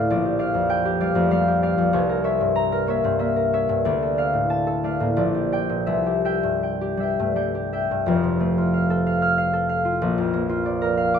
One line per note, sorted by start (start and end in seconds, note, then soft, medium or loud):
0.00 0.11 D2 medium
0.00 0.12 A2 medium
0.00 0.12 A3 medium
0.00 0.12 A4 medium
0.00 0.38 F5 medium
0.00 0.11 A5 medium
0.10 1.96 A#1 medium
0.10 0.38 D5 medium
0.25 0.84 G4 medium
0.39 1.00 D5 medium
0.39 1.00 F5 medium
0.54 1.14 F2 medium
0.70 3.87 G5 medium
0.85 1.46 G4 medium
1.00 1.30 G3 medium
1.00 1.61 D5 medium
1.00 1.30 F5 medium
1.15 1.77 F2 medium
1.15 1.42 A3 medium
1.31 3.87 G3 medium
1.31 1.62 F5 medium
1.48 3.88 G4 medium
1.62 1.95 D5 medium
1.62 1.96 F5 medium
1.78 1.95 F2 medium
1.93 3.88 C2 medium
1.93 2.23 C#5 medium
2.09 2.71 A#4 medium
2.24 2.87 C#5 medium
2.24 2.87 E5 medium
2.40 3.03 G2 medium
2.56 3.87 A#5 medium
2.72 3.35 A#4 medium
2.87 3.18 A#3 medium
2.87 3.52 C#5 medium
2.87 3.18 E5 medium
3.04 3.68 G2 medium
3.04 3.31 C4 medium
3.19 3.87 A#3 medium
3.19 3.52 E5 medium
3.36 3.88 A#4 medium
3.53 3.88 C#5 medium
3.53 3.88 E5 medium
3.69 3.88 G2 medium
3.85 5.20 D2 medium
3.85 4.17 D5 medium
4.02 4.66 A4 medium
4.18 4.83 D5 medium
4.18 4.83 F5 medium
4.33 4.99 A2 medium
4.50 5.20 A5 medium
4.67 5.20 A4 medium
4.84 5.20 A3 medium
4.84 5.16 D5 medium
4.84 5.21 F5 medium
5.00 5.20 A2 medium
5.00 5.29 A#3 medium
5.17 5.91 A#1 medium
5.17 5.51 D5 medium
5.34 6.05 G4 medium
5.52 5.91 D5 medium
5.52 6.24 G5 medium
5.69 5.91 A#2 medium
5.86 8.10 C2 medium
5.86 6.24 E5 medium
6.06 6.80 G4 medium
6.25 6.99 E5 medium
6.25 6.62 G5 medium
6.43 7.19 G2 medium
6.63 6.99 G5 medium
6.81 7.53 G4 medium
6.97 7.35 G3 medium
6.97 7.72 E5 medium
7.03 7.34 G5 medium
7.19 7.90 G2 medium
7.19 7.50 A3 medium
7.36 8.10 G3 medium
7.36 7.72 G5 medium
7.55 8.11 G4 medium
7.73 8.11 E5 medium
7.73 8.11 G5 medium
7.91 8.11 G2 medium
8.06 10.03 F1 medium
8.06 10.04 F2 medium
8.24 10.03 C3 medium
8.40 10.03 A3 medium
8.58 9.84 F4 medium
8.74 9.05 F5 medium
8.90 9.52 A4 medium
9.07 9.37 F5 medium
9.22 11.19 F6 loud
9.38 9.68 F5 medium
9.53 10.04 A4 medium
9.69 10.96 F5 medium
9.85 10.48 F4 medium
10.02 11.19 A#1 medium
10.18 11.19 F2 medium
10.33 11.19 A#3 medium
10.49 11.19 F4 medium
10.66 11.19 D5 medium
10.82 11.19 A#4 medium
10.97 11.19 F5 medium
11.14 11.19 D6 loud